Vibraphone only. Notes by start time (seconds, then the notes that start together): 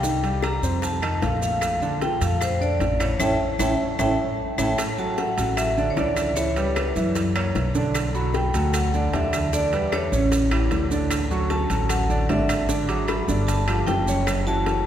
Already playing: G5
0.44 A#5
0.83 A5
1.22 F5
1.43 F5
2.02 G5
2.22 F5
2.42 C5
2.62 D5
3.01 C#5
3.21 E5 G5 A5
3.60 E5 G5 A5
4.00 E5 G5 A5
4.59 E5 G5 A5
4.99 A5
5.18 F#5
5.57 E5
5.90 C#5
5.96 D5
6.36 C#5
6.75 B4
8.15 B5
8.34 G5
8.75 F#5
9.14 E5
9.53 D5
9.93 C#5
11.30 C#6
11.50 A5
11.90 F#5
12.29 E5
12.88 D6
13.08 B5
13.47 A5
13.87 G5
14.47 A5